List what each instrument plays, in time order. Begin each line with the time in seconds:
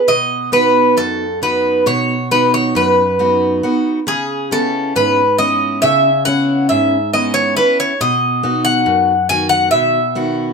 0.08 steel-string acoustic guitar B2, bouzouki D#5
0.52 steel-string acoustic guitar B3 D#4 F#4, bouzouki B4
0.97 steel-string acoustic guitar F#2, bouzouki A4
1.42 steel-string acoustic guitar B3 D#4 F#4, bouzouki B4
1.86 steel-string acoustic guitar B2, bouzouki C#5
2.31 steel-string acoustic guitar B3 D#4 F#4, bouzouki B4
2.54 bouzouki C#5
2.75 steel-string acoustic guitar F#2, bouzouki B4
3.19 steel-string acoustic guitar B3 D#4 F#4
3.63 steel-string acoustic guitar B3 D#4 F#4
4.07 steel-string acoustic guitar C#3, bouzouki G#4
4.51 steel-string acoustic guitar B3 C#4 E4, bouzouki A4
4.96 steel-string acoustic guitar G#2, bouzouki B4
5.38 steel-string acoustic guitar B3 C#4 E4, bouzouki D#5
5.82 steel-string acoustic guitar C#3, bouzouki E5
6.25 steel-string acoustic guitar B3 C#4 E4, bouzouki F#5
6.69 steel-string acoustic guitar G#2, bouzouki E5
7.13 steel-string acoustic guitar B3 C#4 E4, bouzouki D#5
7.34 bouzouki C#5
7.57 steel-string acoustic guitar B3 C#4 E4, bouzouki B4
7.80 bouzouki C#5
8.01 steel-string acoustic guitar B2, bouzouki D#5
8.43 steel-string acoustic guitar B3 D#4 F#4
8.65 bouzouki F#5
8.86 steel-string acoustic guitar F#2
9.29 steel-string acoustic guitar D#3 B3 F#4, bouzouki G#5
9.49 bouzouki F#5
9.71 steel-string acoustic guitar B2, bouzouki E5
10.15 steel-string acoustic guitar D#3 B3 F#4